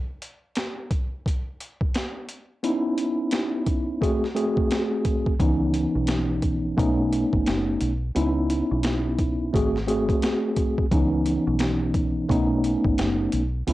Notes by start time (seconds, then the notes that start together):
0.22 closed hi-hat
0.55 snare, closed hi-hat
0.91 kick, closed hi-hat
1.26 kick, closed hi-hat
1.60 closed hi-hat
1.81 kick
1.94 snare, closed hi-hat
2.29 closed hi-hat
2.63 B3 C#4 D#4 E4, closed hi-hat
2.98 closed hi-hat
3.31 snare, closed hi-hat
3.67 kick, closed hi-hat
4.01 A3 C4 F#4 G#4, kick, closed hi-hat
4.24 snare
4.35 A3 C4 F#4 G#4, closed hi-hat
4.57 kick
4.71 snare, closed hi-hat
5.05 kick, closed hi-hat
5.26 kick
5.40 C#2 E3 B3 C#4 D#4, kick, closed hi-hat
5.74 closed hi-hat
5.95 B1
6.07 snare, closed hi-hat
6.42 kick, closed hi-hat
6.77 B1 A3 B3 C#4 D#4, kick, closed hi-hat
7.13 closed hi-hat
7.33 G#1, kick
7.46 F#1, snare, closed hi-hat
7.81 B1, closed hi-hat
8.15 C#2 B3 C#4 D#4 E4, closed hi-hat
8.50 closed hi-hat
8.71 B1
8.83 snare, closed hi-hat
9.18 kick, closed hi-hat
9.53 G#1 A3 C4 F#4 G#4, kick, closed hi-hat
9.76 snare
9.87 A3 C4 F#4 G#4, closed hi-hat
10.09 kick, closed hi-hat
10.22 snare, closed hi-hat
10.56 kick, closed hi-hat
10.78 kick
10.91 C#2 E3 B3 C#4 D#4, kick, closed hi-hat
11.26 closed hi-hat
11.47 B1
11.59 snare, closed hi-hat
11.94 kick, closed hi-hat
12.29 B1 A3 B3 C#4 D#4, kick, closed hi-hat
12.64 closed hi-hat
12.85 G#1, kick
12.98 F#1, snare, closed hi-hat
13.32 B1, closed hi-hat
13.67 C#2 B3 C#4 D#4 E4, closed hi-hat